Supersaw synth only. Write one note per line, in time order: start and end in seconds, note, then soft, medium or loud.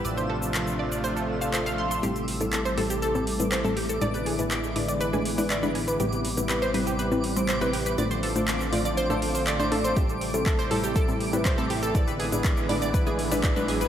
0.05 2.01 C3 medium
0.05 2.01 F3 medium
0.05 2.01 A3 medium
0.05 2.01 D4 medium
0.05 2.01 F4 medium
2.03 3.99 C3 medium
2.03 7.94 E3 medium
2.03 4.00 G3 medium
2.03 3.99 A3 medium
2.03 7.94 E4 medium
4.01 5.98 D3 medium
4.01 5.98 G#3 medium
4.01 7.94 B3 medium
6.00 7.96 C3 medium
6.00 7.96 G3 medium
7.98 9.95 D3 medium
7.98 9.95 F3 medium
7.98 11.91 A3 medium
7.98 9.95 C4 medium
7.98 9.95 F4 medium
9.97 11.93 C3 medium
9.97 13.88 E3 medium
9.97 11.93 G3 medium
9.97 13.88 E4 medium
11.95 13.88 D3 medium
11.95 13.88 G#3 medium
11.95 13.88 B3 medium